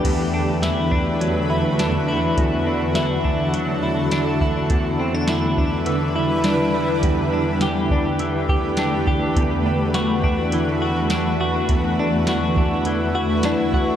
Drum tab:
CC |x-------|--------|--------|--------|
HH |x-x-x-x-|x-x-x-x-|x-x-x-x-|x-x-x-x-|
SD |--o---o-|--o---o-|--o---o-|--o---o-|
BD |o--o----|o--o---o|o--o----|o--o-o-o|

CC |--------|--------|
HH |x-x-x-x-|x-x-x-x-|
SD |--o---o-|--o---o-|
BD |o--o----|o--o---o|